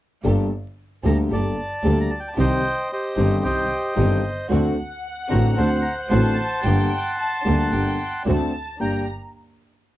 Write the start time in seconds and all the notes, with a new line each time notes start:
0.24 G1 G2 G3 A#3 D4 G4 A4
1.04 D2 D3 G3 A#3 D4 G4 A4 A#5
1.30 G1 G2 G3 A#3 D4 G4 A4 D5 A5
1.84 D2 D3 G3 A#3 D4 G4 A4
2.01 A#5
2.10 A5
2.20 G5
2.28 A5
2.37 C2 C3 D#3 G3 C4 D#4 G4 C5 D#5 G5
2.93 G4 C5 D#5
3.17 G1 G2 D#3 G3 C4 D#4 G4
3.43 C2 C3 D#3 C4 D#4 G4 C5 D#5 G5
3.96 G1 G2 D#3 G3 C4 D#4 G4
4.50 D2 D3 A3 C4 D4 F#4 F#5
5.29 A1 A2 D3 A3 C4 D4 F#4 A#5
5.56 D2 D3 A3 C4 D4 F#4 C5 F#5 A5
5.82 A#5
6.10 A1 A2 D3 A3 C4 D4 F#4 F#5 A5 C6
6.64 G1 G2 D3 G3 A#3 D4 G4 G5
7.19 A5
7.45 D2 D3 G3 A#3 D4 G4
7.72 G1 G2 D3 G3 A#3 D4 G4 G5
8.26 D2 D3 A3 C4 D4 F#4 A5
8.80 G1 G2 A#3 D4 G4 G5 A#5